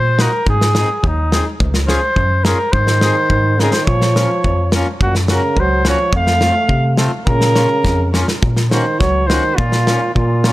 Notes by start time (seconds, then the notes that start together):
Already playing: A#2 C5
0.18 A#3 D#4 F#4 A#4, snare
0.46 G#2 G#4, kick
0.61 snare
0.75 C4 D#4 G#4, snare
1.04 D#2 D#4, kick
1.32 C4 D#4 G#4, snare
1.60 C#2, kick
1.74 snare
1.87 C#4 F4 G#4 C5, snare
2.16 F#2, kick
2.44 C#4 F4 G#4 A#4, snare
2.72 G#2 D#3 C5, kick
2.87 snare
3.01 C4 D#4 G#4, snare
3.30 G#2, kick
3.58 C#3 C4 D#4 G#4 A#4, snare
3.72 D#3 C5, snare
3.84 A#2 F3 C#5, kick
4.02 snare
4.16 A#3 C#4 F4, snare
4.44 F2, kick
4.72 A#3 C#4 F4, snare
5.01 F#2 A#2 F#4, kick
5.15 snare
5.28 C#3 A#3 C#4 F#4, snare
5.34 A#4
5.56 C#2 F#3 C5, kick
5.85 F3 A#3 C#4 F#4 C#5, snare
6.13 F2 A3, kick
6.17 F5
6.27 snare
6.41 A3 C4 F4, snare
6.69 C3, kick
6.97 A3 C4 F4, snare
7.27 A#2 C#3 A#4, kick
7.41 snare
7.54 A#3 C#4 F4, snare
7.85 F2, kick, snare
8.12 A#3 C#4 F4, snare
8.28 snare
8.42 A#2, kick
8.57 snare
8.71 D#3 A#3 C#4 F#4 C5, snare
8.99 C#2 F#3 C#5, kick, snare
9.27 D#3 A#3 C#4 C5, snare
9.31 F#4
9.56 A#2 F4, kick
9.72 snare
9.87 A#3 C#4 F4, snare
10.14 A#2 F4, kick
10.44 A#3 C#4 F4, snare